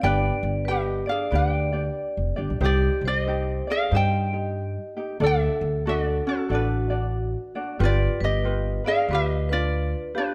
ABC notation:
X:1
M:4/4
L:1/16
Q:"Swing" 1/4=93
K:Gphr
V:1 name="Ukulele"
[=Bg]4 [Ge]2 [Af]2 [Bg]6 z2 | [Gd]2 [Ge]4 [Af]2 [cg]8 | [=A=e]4 [^Fd]2 [_DA]2 [=D=B]6 z2 | [Fd]2 [Ge]4 [Af]2 [Ge]2 [Fd]4 [D=B]2 |]
V:2 name="Vibraphone"
d4 =B2 d2 d6 z2 | G2 c4 d2 e8 | =A4 A2 ^F2 F6 z2 | =B2 B4 d2 B2 B4 G2 |]
V:3 name="Ukulele"
[DG=Bd]4 [GB]2 [Dd]2 [DGBd]2 [DGd]4 [DGd]2 | [EGc]4 [EGc]2 [Ed]2 [EGc]2 [EG]4 [EG]2 | [D^F=Ad]4 [DFAd]2 F2 [DFAd]2 [DFd]4 [DFd]2 | [FG=B]4 [FGB]2 [DFB]2 [FGB]2 [DFB]4 [DFB]2 |]
V:4 name="Upright bass" clef=bass
G,,,2 G,,,6 D,,4- D,, F,,, G,,, =B,,, | C,,2 C,,6 G,,8 | D,,2 D,,6 =A,,,8 | G,,,2 G,,,6 D,,8 |]